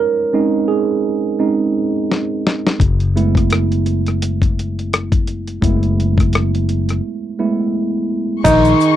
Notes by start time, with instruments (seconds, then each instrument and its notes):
Already playing: tine electric piano G#3 C#4 D#4 A#4 C5 C#5
0.33 tine electric piano G#3 C4 C#4 D#4
0.68 tine electric piano G#4
1.39 tine electric piano G#3 C4 C#4 D#4
2.12 snare
2.47 snare
2.67 snare
2.80 fretless electric bass F#1, kick, closed hi-hat
3.00 closed hi-hat
3.16 tine electric piano G#3 A3 B3 E4, closed hi-hat
3.35 kick, cross-stick, closed hi-hat
3.50 cross-stick, closed hi-hat
3.72 closed hi-hat
3.86 closed hi-hat
4.06 cross-stick, closed hi-hat
4.22 closed hi-hat
4.42 kick, closed hi-hat
4.59 closed hi-hat
4.79 closed hi-hat
4.93 cross-stick, closed hi-hat
5.12 kick, closed hi-hat
5.27 closed hi-hat
5.47 closed hi-hat
5.62 fretless electric bass F#1, tine electric piano G#3 A3 B3 E4, kick, closed hi-hat
5.83 closed hi-hat
6.00 closed hi-hat
6.18 kick, cross-stick, closed hi-hat
6.33 cross-stick, closed hi-hat
6.55 closed hi-hat
6.69 closed hi-hat
6.89 cross-stick, closed hi-hat
7.39 tine electric piano G#3 A3 B3 E4
8.44 fretless electric bass A#1, tine electric piano D#3 D#4, string section G#4 D#5 C6 C#6, kick, closed hi-hat, crash, shaker
8.65 closed hi-hat, shaker
8.80 closed hi-hat, shaker